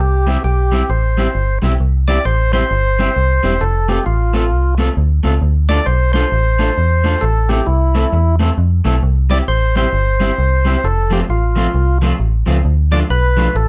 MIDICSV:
0, 0, Header, 1, 5, 480
1, 0, Start_track
1, 0, Key_signature, 0, "major"
1, 0, Tempo, 452148
1, 1911, Time_signature, 4, 2, 24, 8
1, 14527, End_track
2, 0, Start_track
2, 0, Title_t, "Tonewheel organ"
2, 0, Program_c, 0, 16
2, 0, Note_on_c, 0, 67, 92
2, 458, Note_off_c, 0, 67, 0
2, 471, Note_on_c, 0, 67, 75
2, 954, Note_on_c, 0, 72, 64
2, 965, Note_off_c, 0, 67, 0
2, 1684, Note_off_c, 0, 72, 0
2, 2205, Note_on_c, 0, 74, 100
2, 2392, Note_on_c, 0, 72, 85
2, 2396, Note_off_c, 0, 74, 0
2, 2675, Note_off_c, 0, 72, 0
2, 2688, Note_on_c, 0, 72, 125
2, 3832, Note_on_c, 0, 69, 104
2, 3865, Note_off_c, 0, 72, 0
2, 4128, Note_on_c, 0, 67, 93
2, 4134, Note_off_c, 0, 69, 0
2, 4298, Note_off_c, 0, 67, 0
2, 4310, Note_on_c, 0, 65, 78
2, 5040, Note_off_c, 0, 65, 0
2, 6038, Note_on_c, 0, 74, 105
2, 6221, Note_on_c, 0, 72, 95
2, 6231, Note_off_c, 0, 74, 0
2, 6496, Note_off_c, 0, 72, 0
2, 6509, Note_on_c, 0, 72, 105
2, 7656, Note_on_c, 0, 69, 106
2, 7694, Note_off_c, 0, 72, 0
2, 7952, Note_on_c, 0, 67, 85
2, 7963, Note_off_c, 0, 69, 0
2, 8137, Note_on_c, 0, 64, 82
2, 8147, Note_off_c, 0, 67, 0
2, 8872, Note_off_c, 0, 64, 0
2, 9880, Note_on_c, 0, 74, 96
2, 9963, Note_off_c, 0, 74, 0
2, 10066, Note_on_c, 0, 72, 100
2, 10359, Note_off_c, 0, 72, 0
2, 10372, Note_on_c, 0, 72, 102
2, 11514, Note_on_c, 0, 69, 99
2, 11546, Note_off_c, 0, 72, 0
2, 11811, Note_on_c, 0, 67, 85
2, 11813, Note_off_c, 0, 69, 0
2, 11892, Note_off_c, 0, 67, 0
2, 11996, Note_on_c, 0, 65, 67
2, 12723, Note_off_c, 0, 65, 0
2, 13715, Note_on_c, 0, 74, 107
2, 13800, Note_off_c, 0, 74, 0
2, 13912, Note_on_c, 0, 71, 94
2, 14394, Note_on_c, 0, 69, 79
2, 14404, Note_off_c, 0, 71, 0
2, 14527, Note_off_c, 0, 69, 0
2, 14527, End_track
3, 0, Start_track
3, 0, Title_t, "Clean electric guitar"
3, 0, Program_c, 1, 27
3, 283, Note_on_c, 1, 55, 85
3, 293, Note_on_c, 1, 60, 100
3, 296, Note_on_c, 1, 64, 95
3, 305, Note_on_c, 1, 67, 102
3, 376, Note_off_c, 1, 55, 0
3, 380, Note_off_c, 1, 60, 0
3, 382, Note_off_c, 1, 64, 0
3, 387, Note_off_c, 1, 67, 0
3, 761, Note_on_c, 1, 55, 81
3, 770, Note_on_c, 1, 60, 76
3, 777, Note_on_c, 1, 64, 83
3, 784, Note_on_c, 1, 67, 81
3, 855, Note_off_c, 1, 55, 0
3, 859, Note_off_c, 1, 60, 0
3, 863, Note_off_c, 1, 64, 0
3, 866, Note_off_c, 1, 67, 0
3, 1246, Note_on_c, 1, 55, 84
3, 1253, Note_on_c, 1, 60, 88
3, 1259, Note_on_c, 1, 64, 83
3, 1265, Note_on_c, 1, 67, 87
3, 1338, Note_off_c, 1, 55, 0
3, 1341, Note_off_c, 1, 60, 0
3, 1344, Note_off_c, 1, 64, 0
3, 1347, Note_off_c, 1, 67, 0
3, 1720, Note_on_c, 1, 55, 81
3, 1731, Note_on_c, 1, 60, 77
3, 1735, Note_on_c, 1, 64, 83
3, 1745, Note_on_c, 1, 67, 85
3, 1814, Note_off_c, 1, 55, 0
3, 1820, Note_off_c, 1, 60, 0
3, 1822, Note_off_c, 1, 64, 0
3, 1827, Note_off_c, 1, 67, 0
3, 2206, Note_on_c, 1, 55, 79
3, 2212, Note_on_c, 1, 60, 79
3, 2222, Note_on_c, 1, 64, 99
3, 2225, Note_on_c, 1, 67, 87
3, 2297, Note_off_c, 1, 55, 0
3, 2300, Note_off_c, 1, 60, 0
3, 2305, Note_off_c, 1, 64, 0
3, 2307, Note_off_c, 1, 67, 0
3, 2684, Note_on_c, 1, 55, 83
3, 2691, Note_on_c, 1, 60, 85
3, 2698, Note_on_c, 1, 64, 95
3, 2705, Note_on_c, 1, 67, 95
3, 2776, Note_off_c, 1, 55, 0
3, 2779, Note_off_c, 1, 60, 0
3, 2783, Note_off_c, 1, 64, 0
3, 2786, Note_off_c, 1, 67, 0
3, 3172, Note_on_c, 1, 55, 83
3, 3180, Note_on_c, 1, 60, 100
3, 3185, Note_on_c, 1, 64, 103
3, 3193, Note_on_c, 1, 67, 98
3, 3260, Note_off_c, 1, 55, 0
3, 3264, Note_off_c, 1, 60, 0
3, 3267, Note_off_c, 1, 64, 0
3, 3270, Note_off_c, 1, 67, 0
3, 3642, Note_on_c, 1, 55, 83
3, 3652, Note_on_c, 1, 60, 86
3, 3657, Note_on_c, 1, 64, 91
3, 3661, Note_on_c, 1, 67, 87
3, 3735, Note_off_c, 1, 55, 0
3, 3740, Note_off_c, 1, 60, 0
3, 3742, Note_off_c, 1, 64, 0
3, 3744, Note_off_c, 1, 67, 0
3, 4123, Note_on_c, 1, 57, 84
3, 4131, Note_on_c, 1, 60, 90
3, 4134, Note_on_c, 1, 65, 79
3, 4145, Note_on_c, 1, 69, 93
3, 4215, Note_off_c, 1, 57, 0
3, 4219, Note_off_c, 1, 60, 0
3, 4221, Note_off_c, 1, 65, 0
3, 4226, Note_off_c, 1, 69, 0
3, 4601, Note_on_c, 1, 57, 76
3, 4604, Note_on_c, 1, 60, 89
3, 4612, Note_on_c, 1, 65, 85
3, 4617, Note_on_c, 1, 69, 87
3, 4694, Note_off_c, 1, 57, 0
3, 4695, Note_off_c, 1, 60, 0
3, 4699, Note_off_c, 1, 65, 0
3, 4702, Note_off_c, 1, 69, 0
3, 5075, Note_on_c, 1, 57, 98
3, 5085, Note_on_c, 1, 60, 88
3, 5090, Note_on_c, 1, 65, 99
3, 5095, Note_on_c, 1, 69, 117
3, 5170, Note_off_c, 1, 57, 0
3, 5175, Note_off_c, 1, 60, 0
3, 5178, Note_off_c, 1, 65, 0
3, 5180, Note_off_c, 1, 69, 0
3, 5556, Note_on_c, 1, 57, 74
3, 5565, Note_on_c, 1, 60, 74
3, 5570, Note_on_c, 1, 65, 87
3, 5575, Note_on_c, 1, 69, 81
3, 5651, Note_off_c, 1, 57, 0
3, 5655, Note_off_c, 1, 60, 0
3, 5658, Note_off_c, 1, 65, 0
3, 5660, Note_off_c, 1, 69, 0
3, 6040, Note_on_c, 1, 57, 96
3, 6048, Note_on_c, 1, 62, 87
3, 6054, Note_on_c, 1, 65, 89
3, 6061, Note_on_c, 1, 69, 102
3, 6132, Note_off_c, 1, 57, 0
3, 6136, Note_off_c, 1, 62, 0
3, 6139, Note_off_c, 1, 65, 0
3, 6143, Note_off_c, 1, 69, 0
3, 6515, Note_on_c, 1, 57, 74
3, 6527, Note_on_c, 1, 62, 85
3, 6531, Note_on_c, 1, 65, 101
3, 6537, Note_on_c, 1, 69, 98
3, 6610, Note_off_c, 1, 57, 0
3, 6615, Note_off_c, 1, 62, 0
3, 6618, Note_off_c, 1, 65, 0
3, 6621, Note_off_c, 1, 69, 0
3, 6996, Note_on_c, 1, 57, 98
3, 7004, Note_on_c, 1, 62, 100
3, 7010, Note_on_c, 1, 65, 93
3, 7015, Note_on_c, 1, 69, 94
3, 7090, Note_off_c, 1, 57, 0
3, 7094, Note_off_c, 1, 62, 0
3, 7097, Note_off_c, 1, 65, 0
3, 7099, Note_off_c, 1, 69, 0
3, 7473, Note_on_c, 1, 57, 89
3, 7481, Note_on_c, 1, 62, 84
3, 7490, Note_on_c, 1, 65, 91
3, 7493, Note_on_c, 1, 69, 97
3, 7568, Note_off_c, 1, 57, 0
3, 7572, Note_off_c, 1, 62, 0
3, 7576, Note_off_c, 1, 65, 0
3, 7578, Note_off_c, 1, 69, 0
3, 7954, Note_on_c, 1, 57, 69
3, 7963, Note_on_c, 1, 60, 90
3, 7970, Note_on_c, 1, 64, 98
3, 7978, Note_on_c, 1, 69, 92
3, 8049, Note_off_c, 1, 57, 0
3, 8053, Note_off_c, 1, 60, 0
3, 8057, Note_off_c, 1, 64, 0
3, 8060, Note_off_c, 1, 69, 0
3, 8437, Note_on_c, 1, 57, 86
3, 8441, Note_on_c, 1, 60, 90
3, 8448, Note_on_c, 1, 64, 96
3, 8454, Note_on_c, 1, 69, 89
3, 8530, Note_off_c, 1, 57, 0
3, 8532, Note_off_c, 1, 60, 0
3, 8535, Note_off_c, 1, 64, 0
3, 8538, Note_off_c, 1, 69, 0
3, 8911, Note_on_c, 1, 57, 93
3, 8920, Note_on_c, 1, 60, 84
3, 8928, Note_on_c, 1, 64, 79
3, 8934, Note_on_c, 1, 69, 84
3, 9007, Note_off_c, 1, 57, 0
3, 9011, Note_off_c, 1, 60, 0
3, 9015, Note_off_c, 1, 64, 0
3, 9018, Note_off_c, 1, 69, 0
3, 9391, Note_on_c, 1, 57, 93
3, 9399, Note_on_c, 1, 60, 76
3, 9403, Note_on_c, 1, 64, 82
3, 9409, Note_on_c, 1, 69, 87
3, 9487, Note_off_c, 1, 57, 0
3, 9490, Note_off_c, 1, 60, 0
3, 9493, Note_off_c, 1, 64, 0
3, 9495, Note_off_c, 1, 69, 0
3, 9870, Note_on_c, 1, 55, 85
3, 9879, Note_on_c, 1, 60, 88
3, 9886, Note_on_c, 1, 64, 99
3, 9892, Note_on_c, 1, 67, 91
3, 9966, Note_off_c, 1, 55, 0
3, 9971, Note_off_c, 1, 60, 0
3, 9974, Note_off_c, 1, 64, 0
3, 9977, Note_off_c, 1, 67, 0
3, 10358, Note_on_c, 1, 55, 92
3, 10368, Note_on_c, 1, 60, 100
3, 10371, Note_on_c, 1, 64, 86
3, 10378, Note_on_c, 1, 67, 105
3, 10450, Note_off_c, 1, 55, 0
3, 10455, Note_off_c, 1, 60, 0
3, 10457, Note_off_c, 1, 64, 0
3, 10460, Note_off_c, 1, 67, 0
3, 10829, Note_on_c, 1, 55, 92
3, 10836, Note_on_c, 1, 60, 97
3, 10841, Note_on_c, 1, 64, 98
3, 10847, Note_on_c, 1, 67, 94
3, 10926, Note_off_c, 1, 55, 0
3, 10929, Note_off_c, 1, 60, 0
3, 10932, Note_off_c, 1, 64, 0
3, 10935, Note_off_c, 1, 67, 0
3, 11305, Note_on_c, 1, 55, 92
3, 11315, Note_on_c, 1, 60, 102
3, 11323, Note_on_c, 1, 64, 92
3, 11325, Note_on_c, 1, 67, 103
3, 11404, Note_off_c, 1, 55, 0
3, 11409, Note_off_c, 1, 60, 0
3, 11413, Note_off_c, 1, 64, 0
3, 11414, Note_off_c, 1, 67, 0
3, 11787, Note_on_c, 1, 53, 90
3, 11796, Note_on_c, 1, 57, 106
3, 11802, Note_on_c, 1, 60, 85
3, 11808, Note_on_c, 1, 65, 105
3, 11885, Note_off_c, 1, 53, 0
3, 11890, Note_off_c, 1, 57, 0
3, 11893, Note_off_c, 1, 60, 0
3, 11895, Note_off_c, 1, 65, 0
3, 12269, Note_on_c, 1, 53, 86
3, 12277, Note_on_c, 1, 57, 84
3, 12284, Note_on_c, 1, 60, 90
3, 12292, Note_on_c, 1, 65, 98
3, 12366, Note_off_c, 1, 53, 0
3, 12370, Note_off_c, 1, 57, 0
3, 12374, Note_off_c, 1, 60, 0
3, 12378, Note_off_c, 1, 65, 0
3, 12758, Note_on_c, 1, 53, 105
3, 12767, Note_on_c, 1, 57, 99
3, 12769, Note_on_c, 1, 60, 91
3, 12778, Note_on_c, 1, 65, 109
3, 12851, Note_off_c, 1, 53, 0
3, 12856, Note_off_c, 1, 57, 0
3, 12857, Note_off_c, 1, 60, 0
3, 12861, Note_off_c, 1, 65, 0
3, 13229, Note_on_c, 1, 53, 85
3, 13235, Note_on_c, 1, 57, 92
3, 13241, Note_on_c, 1, 60, 90
3, 13247, Note_on_c, 1, 65, 96
3, 13327, Note_off_c, 1, 53, 0
3, 13330, Note_off_c, 1, 57, 0
3, 13333, Note_off_c, 1, 60, 0
3, 13336, Note_off_c, 1, 65, 0
3, 13711, Note_on_c, 1, 53, 82
3, 13720, Note_on_c, 1, 57, 99
3, 13725, Note_on_c, 1, 62, 103
3, 13729, Note_on_c, 1, 65, 97
3, 13808, Note_off_c, 1, 53, 0
3, 13813, Note_off_c, 1, 57, 0
3, 13815, Note_off_c, 1, 62, 0
3, 13817, Note_off_c, 1, 65, 0
3, 14190, Note_on_c, 1, 53, 94
3, 14199, Note_on_c, 1, 57, 96
3, 14208, Note_on_c, 1, 62, 96
3, 14212, Note_on_c, 1, 65, 91
3, 14288, Note_off_c, 1, 53, 0
3, 14293, Note_off_c, 1, 57, 0
3, 14297, Note_off_c, 1, 62, 0
3, 14299, Note_off_c, 1, 65, 0
3, 14527, End_track
4, 0, Start_track
4, 0, Title_t, "FM bass"
4, 0, Program_c, 2, 39
4, 0, Note_on_c, 2, 36, 93
4, 396, Note_off_c, 2, 36, 0
4, 471, Note_on_c, 2, 35, 93
4, 879, Note_off_c, 2, 35, 0
4, 951, Note_on_c, 2, 33, 91
4, 1359, Note_off_c, 2, 33, 0
4, 1433, Note_on_c, 2, 31, 83
4, 1682, Note_off_c, 2, 31, 0
4, 1726, Note_on_c, 2, 35, 89
4, 1883, Note_off_c, 2, 35, 0
4, 1914, Note_on_c, 2, 36, 94
4, 2321, Note_off_c, 2, 36, 0
4, 2394, Note_on_c, 2, 33, 95
4, 2800, Note_off_c, 2, 33, 0
4, 2876, Note_on_c, 2, 31, 91
4, 3281, Note_off_c, 2, 31, 0
4, 3360, Note_on_c, 2, 36, 89
4, 3606, Note_off_c, 2, 36, 0
4, 3647, Note_on_c, 2, 28, 84
4, 3803, Note_off_c, 2, 28, 0
4, 3833, Note_on_c, 2, 29, 103
4, 4239, Note_off_c, 2, 29, 0
4, 4316, Note_on_c, 2, 33, 88
4, 4797, Note_on_c, 2, 36, 105
4, 4813, Note_off_c, 2, 33, 0
4, 5201, Note_off_c, 2, 36, 0
4, 5278, Note_on_c, 2, 38, 97
4, 5523, Note_off_c, 2, 38, 0
4, 5570, Note_on_c, 2, 37, 85
4, 5724, Note_off_c, 2, 37, 0
4, 5750, Note_on_c, 2, 38, 97
4, 6156, Note_off_c, 2, 38, 0
4, 6231, Note_on_c, 2, 35, 97
4, 6636, Note_off_c, 2, 35, 0
4, 6711, Note_on_c, 2, 33, 98
4, 7116, Note_off_c, 2, 33, 0
4, 7194, Note_on_c, 2, 40, 80
4, 7598, Note_off_c, 2, 40, 0
4, 7671, Note_on_c, 2, 33, 100
4, 8076, Note_off_c, 2, 33, 0
4, 8147, Note_on_c, 2, 36, 98
4, 8554, Note_off_c, 2, 36, 0
4, 8628, Note_on_c, 2, 40, 95
4, 9034, Note_off_c, 2, 40, 0
4, 9106, Note_on_c, 2, 41, 90
4, 9356, Note_off_c, 2, 41, 0
4, 9400, Note_on_c, 2, 35, 93
4, 9557, Note_off_c, 2, 35, 0
4, 9585, Note_on_c, 2, 36, 107
4, 9993, Note_off_c, 2, 36, 0
4, 10065, Note_on_c, 2, 33, 88
4, 10473, Note_off_c, 2, 33, 0
4, 10540, Note_on_c, 2, 31, 91
4, 10950, Note_off_c, 2, 31, 0
4, 11024, Note_on_c, 2, 36, 93
4, 11433, Note_off_c, 2, 36, 0
4, 11510, Note_on_c, 2, 29, 105
4, 11916, Note_off_c, 2, 29, 0
4, 11990, Note_on_c, 2, 33, 80
4, 12396, Note_off_c, 2, 33, 0
4, 12468, Note_on_c, 2, 36, 96
4, 12876, Note_off_c, 2, 36, 0
4, 12947, Note_on_c, 2, 33, 91
4, 13197, Note_off_c, 2, 33, 0
4, 13240, Note_on_c, 2, 37, 84
4, 13399, Note_off_c, 2, 37, 0
4, 13427, Note_on_c, 2, 38, 104
4, 13835, Note_off_c, 2, 38, 0
4, 13909, Note_on_c, 2, 35, 98
4, 14317, Note_off_c, 2, 35, 0
4, 14386, Note_on_c, 2, 33, 99
4, 14527, Note_off_c, 2, 33, 0
4, 14527, End_track
5, 0, Start_track
5, 0, Title_t, "Muted clean electric guitar strokes"
5, 8626, Note_on_c, 9, 29, 34
5, 8732, Note_off_c, 9, 29, 0
5, 14527, End_track
0, 0, End_of_file